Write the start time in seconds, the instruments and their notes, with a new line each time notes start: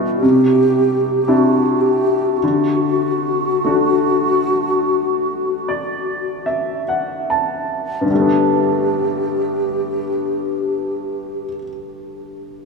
Already playing: upright piano B2 G3 B3 E4
0.18 alto flute G4
0.22 upright piano C3
1.25 upright piano C4 D4 E4, alto flute G4
1.36 alto flute F#4
1.81 alto flute G4
2.37 alto flute F#4
2.43 upright piano D3
3.65 upright piano A3 D4 F#4
5.68 upright piano D5
6.46 upright piano E5
6.88 upright piano F#5
7.30 upright piano A5
8.01 upright piano G2
8.06 upright piano D3
8.10 upright piano G3, alto flute G4
8.15 upright piano A3
8.19 upright piano B3
8.24 upright piano D4